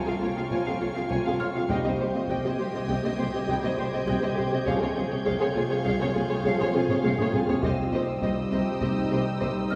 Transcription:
Already playing: harp C3 C4, ambient pad F4 F5 C#6, violin section G5 A5 A#5
0.05 cello section C3, viola section F4, violin section G#4 F5
0.20 double bass section C2, harp C3, cello section C3, viola section F4, violin section F4 C#5
0.35 cello section C3, viola section F4, violin section G#4 F5
0.50 double bass section C2, cello section C3, french horn section F3 C#4, harp C4, viola section F4, violin section C#5 G#5, taiko
0.65 cello section C3, viola section F4, violin section G#4 F5
0.80 double bass section C2, cello section C3, harp C4, viola section F4, violin section F4 C#5
0.94 cello section C3, viola section F4, violin section G#4 F5
1.10 double bass section C2, harp C3, cello section C3, viola section F4, violin section C#5 G#5, taiko
1.25 cello section C3, viola section F4, violin section G#4 F5
1.39 double bass section C2, cello section C3, harp C4, viola section F4, violin section F4 C#5, music box F6
1.54 cello section C3, viola section F4, violin section G#4 F5
1.69 double bass section C2, harp C3, cello section C3, french horn section G3 D#4, ambient pad G4 C5 D#5, viola section G4, violin section D#5 G5 G6, taiko
1.84 cello section C3, viola section G4, violin section C5 D#5
1.99 double bass section C2, harp C3, cello section C3, viola section G4, violin section G4 C5
2.14 cello section C3, viola section G4, violin section C5 D#5
2.28 double bass section C2, cello section C3, harp C4, viola section G4, violin section D#5 G5 G#6, taiko
2.44 cello section C3, viola section G4, violin section C5 D#5
2.58 double bass section C2, cello section C3, harp C3, viola section G4, violin section G4 C5
2.73 cello section C3, viola section G4, violin section C5 D#5
2.88 double bass section C2, cello section C3, harp C3, viola section G4, violin section D#5 G5, taiko
3.03 cello section C3, viola section G4, violin section C5 D#5
3.18 double bass section C2, cello section C3, harp C3, viola section G4, violin section G4 C5
3.33 cello section C3, viola section G4, violin section C5 D#5
3.47 double bass section C2, cello section C3, french horn section G3 D#4, harp C4, viola section G4, violin section D#5 G5, taiko
3.63 cello section C3, viola section G4, violin section C5 D#5
3.77 double bass section C2, cello section C3, harp C4, viola section G4, violin section G4 C5
3.92 cello section C3, viola section G4, violin section C5 D#5
4.06 double bass section C2, harp C3, cello section C3, viola section G4, music box G4 G6, violin section D#5 G5, taiko
4.22 cello section C3, viola section G4, violin section C5 D#5
4.35 double bass section C2, cello section C3, harp C4, violin section G4 C5, viola section G4
4.50 cello section C3, viola section G4, violin section C5 D#5
4.65 double bass section C2, harp C3, cello section C3, french horn section F3 C#4, ambient pad F4 F5 C#6, viola section G#4, violin section C#5 F5, taiko
4.79 cello section C3, violin section G#4 C#5, viola section G#4
4.95 double bass section C2, harp C3, cello section C3, violin section F4 G#4, viola section G#4
5.09 cello section C3, violin section G#4 C#5, viola section G#4
5.25 double bass section C2, cello section C3, harp C4, viola section G#4, violin section C#5 F5, taiko
5.40 cello section C3, violin section G#4 C#5, viola section G#4
5.54 double bass section C2, harp C3, cello section C3, violin section F4 G#4, viola section G#4
5.69 cello section C3, viola section G#4, violin section G#4 C#5
5.84 double bass section C2, harp C3, cello section C3, viola section G#4, violin section C#5 F5, taiko
5.99 cello section C3, violin section G#4 C#5, viola section G#4
6.14 double bass section C2, harp C3, cello section C3, violin section F4 G#4, viola section G#4
6.29 cello section C3, viola section G#4, violin section G#4 C#5
6.43 double bass section C2, cello section C3, french horn section F3 C#4, harp C4, viola section G#4, violin section C#5 F5, taiko
6.58 cello section C3, viola section G#4, violin section G#4 C#5
6.73 double bass section C2, cello section C3, harp C4, violin section F4 G#4, viola section G#4
6.88 cello section C3, viola section G#4, violin section G#4 C#5, taiko low-mid
7.03 double bass section C2, harp C3, cello section C3, viola section G#4, violin section C#5 F5, taiko high
7.18 cello section C3, viola section G#4, violin section G#4 C#5, taiko low-mid
7.32 double bass section C2, cello section C3, harp C4, violin section F4 G#4, viola section G#4, taiko low-mid
7.47 cello section C3, viola section G#4, violin section G#4 C#5, taiko low
7.62 double bass section C2, harp C3, cello section C3, french horn section G3 D#4, ambient pad D#4 G4 C5, viola section G4, violin section C5 D#5 D#6 E6, taiko
7.92 double bass section C2, harp C3, cello section C3, viola section G4, violin section C5 D#5
8.21 double bass section C2, cello section C3, harp C4, viola section G4, violin section C5 D#5, taiko
8.51 double bass section C2, cello section C3, harp C3, viola section G4, violin section C5 D#5
8.80 double bass section C2, cello section C3, harp C3, viola section G4, violin section C5 D#5, taiko
9.11 double bass section C2, cello section C3, harp C3, viola section G4, violin section C5 D#5
9.40 double bass section C2, cello section C3, harp C4, viola section G4, violin section C5 D#5, taiko
9.70 double bass section C2, cello section C3, harp C4, viola section G4, violin section C5 D#5, music box F6

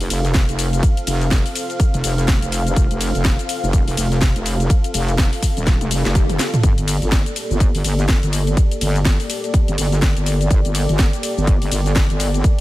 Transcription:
Already playing: analog synth pad C4 F4 A4 F5
0.01 wobble bass F1, open hi-hat, shaker
0.10 wobble bass F1, open hi-hat, ride, shaker
0.25 closed hi-hat, shaker
0.34 kick, snare, closed hi-hat, shaker
0.49 wobble bass F1, closed hi-hat, shaker
0.59 open hi-hat, ride, shaker
0.73 closed hi-hat, shaker
0.83 kick, closed hi-hat, shaker
0.97 closed hi-hat, shaker
1.07 wobble bass F1, open hi-hat, ride, shaker
1.21 closed hi-hat, shaker
1.31 kick, snare, closed hi-hat, shaker
1.46 open hi-hat, shaker
1.55 open hi-hat, ride, shaker
1.70 closed hi-hat, shaker
1.80 kick, closed hi-hat, shaker
1.94 wobble bass F1, closed hi-hat, shaker
2.04 wobble bass F1, open hi-hat, ride, shaker
2.18 closed hi-hat, shaker
2.28 kick, snare, closed hi-hat, shaker
2.42 wobble bass F1, closed hi-hat, shaker
2.52 open hi-hat, ride, shaker
2.67 closed hi-hat, shaker
2.76 wobble bass F1, kick, closed hi-hat, shaker
2.91 wobble bass F1, closed hi-hat, shaker
3.01 open hi-hat, ride, shaker
3.15 wobble bass F1, closed hi-hat, shaker
3.25 kick, snare, closed hi-hat, shaker
3.39 closed hi-hat, shaker
3.49 open hi-hat, ride, shaker
3.63 wobble bass F1, shaker
3.73 kick, closed hi-hat, shaker
3.88 wobble bass F1, open hi-hat, shaker
3.97 wobble bass F1, open hi-hat, ride, shaker
4.12 closed hi-hat, shaker
4.21 kick, snare, closed hi-hat, shaker
4.36 wobble bass F1, closed hi-hat, shaker
4.46 open hi-hat, ride, shaker
4.60 closed hi-hat, shaker
4.70 kick, closed hi-hat, shaker
4.84 closed hi-hat, shaker
4.94 wobble bass F1, open hi-hat, ride, shaker
5.09 closed hi-hat, shaker
5.18 kick, snare, closed hi-hat, shaker
5.33 open hi-hat, shaker
5.43 kick, open hi-hat, ride, shaker
5.57 wobble bass D#1, closed hi-hat, shaker
5.67 kick, snare, closed hi-hat, swell, shaker
5.81 wobble bass F1, closed hi-hat, high tom, shaker
5.91 open hi-hat, ride, shaker
6.05 wobble bass F1, snare, closed hi-hat, shaker
6.15 kick, closed hi-hat, mid tom, shaker
6.30 closed hi-hat, mid tom, shaker
6.39 snare, open hi-hat, ride, shaker
6.54 closed hi-hat, mid tom, shaker
6.63 wobble bass G1, analog synth pad A#3 G4 D5, kick, closed hi-hat, shaker
6.78 wobble bass G1, closed hi-hat, shaker
6.88 open hi-hat, ride, shaker
7.02 wobble bass G1, closed hi-hat, shaker
7.12 kick, snare, closed hi-hat, shaker
7.26 closed hi-hat, shaker
7.36 open hi-hat, ride, shaker
7.50 wobble bass G1, shaker
7.60 kick, closed hi-hat, shaker
7.75 wobble bass G1, open hi-hat, shaker
7.84 wobble bass G1, open hi-hat, ride, shaker
7.99 closed hi-hat, shaker
8.09 kick, snare, closed hi-hat, shaker
8.23 wobble bass G1, closed hi-hat, shaker
8.33 open hi-hat, ride, shaker
8.47 closed hi-hat, shaker
8.57 kick, closed hi-hat, shaker
8.72 closed hi-hat, shaker
8.81 wobble bass G1, open hi-hat, ride, shaker
8.96 closed hi-hat, shaker
9.05 kick, snare, closed hi-hat, shaker
9.20 open hi-hat, shaker
9.30 open hi-hat, ride, shaker
9.44 closed hi-hat, shaker
9.54 kick, closed hi-hat, shaker
9.68 wobble bass G1, closed hi-hat, shaker
9.78 wobble bass G1, open hi-hat, ride, shaker
9.92 closed hi-hat, shaker
10.02 kick, snare, closed hi-hat, shaker
10.17 wobble bass G1, closed hi-hat, shaker
10.26 open hi-hat, ride, shaker
10.41 closed hi-hat, shaker
10.51 wobble bass G1, kick, closed hi-hat, shaker
10.65 wobble bass G1, closed hi-hat, shaker
10.75 open hi-hat, ride, shaker
10.89 wobble bass G1, closed hi-hat, shaker
10.99 kick, snare, closed hi-hat, shaker
11.13 closed hi-hat, shaker
11.23 open hi-hat, ride, shaker
11.38 wobble bass G1, shaker
11.47 kick, closed hi-hat, shaker
11.62 wobble bass G1, open hi-hat, shaker
11.72 wobble bass G1, open hi-hat, ride, shaker
11.86 closed hi-hat, shaker
11.96 kick, snare, closed hi-hat, shaker
12.10 wobble bass G1, closed hi-hat, shaker
12.20 open hi-hat, ride, shaker
12.34 closed hi-hat, shaker
12.44 kick, closed hi-hat, shaker

